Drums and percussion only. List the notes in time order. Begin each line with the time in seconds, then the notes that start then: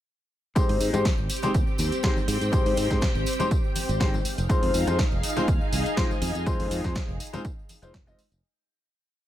0.56 kick, closed hi-hat, tambourine, high conga
0.69 open hi-hat, tambourine
0.80 open hi-hat, tambourine
0.94 closed hi-hat, tambourine, high conga
1.05 kick, snare, closed hi-hat, tambourine
1.18 tambourine
1.29 open hi-hat, tambourine
1.37 closed hi-hat
1.42 closed hi-hat, tambourine, high conga, low conga
1.54 kick, closed hi-hat, tambourine
1.67 tambourine
1.78 open hi-hat, tambourine, high conga
1.92 closed hi-hat, tambourine
2.03 kick, snare, closed hi-hat, tambourine
2.17 tambourine, high conga
2.28 open hi-hat, tambourine
2.41 closed hi-hat, tambourine
2.52 kick, closed hi-hat, tambourine, high conga
2.66 open hi-hat, tambourine
2.77 open hi-hat, tambourine
2.91 kick, snare, closed hi-hat, tambourine, high conga
3.01 kick, snare, closed hi-hat, tambourine
3.03 tambourine
3.15 tambourine
3.26 open hi-hat, tambourine
3.33 closed hi-hat
3.40 closed hi-hat, tambourine, high conga, low conga
3.51 kick, closed hi-hat, tambourine
3.64 tambourine
3.75 open hi-hat, tambourine, high conga
3.89 closed hi-hat, tambourine
4.00 kick, snare, closed hi-hat, tambourine
4.14 tambourine, high conga
4.25 open hi-hat, tambourine
4.38 closed hi-hat, tambourine
4.50 kick, closed hi-hat, tambourine, high conga
4.63 open hi-hat, tambourine
4.74 open hi-hat, tambourine
4.87 closed hi-hat, tambourine, high conga
4.99 kick, snare, closed hi-hat, tambourine
5.12 tambourine
5.23 open hi-hat, tambourine
5.30 closed hi-hat
5.36 closed hi-hat, tambourine, high conga, low conga
5.48 kick, closed hi-hat, tambourine
5.61 tambourine
5.73 open hi-hat, tambourine, high conga
5.86 closed hi-hat, tambourine
5.97 kick, snare, closed hi-hat, tambourine
6.11 tambourine, high conga
6.22 open hi-hat, tambourine
6.35 closed hi-hat, tambourine
6.46 kick, closed hi-hat, tambourine, high conga
6.60 open hi-hat, tambourine
6.71 open hi-hat, tambourine
6.84 kick, snare, closed hi-hat, tambourine, high conga
6.95 kick, snare, closed hi-hat, tambourine
7.08 tambourine
7.20 open hi-hat, tambourine
7.27 closed hi-hat
7.33 closed hi-hat, tambourine, high conga, low conga
7.45 kick, closed hi-hat, tambourine
7.59 tambourine
7.69 open hi-hat, tambourine, high conga
7.83 closed hi-hat, tambourine
7.94 kick, snare, closed hi-hat, tambourine
8.07 tambourine, high conga
8.18 open hi-hat, tambourine
8.32 closed hi-hat, tambourine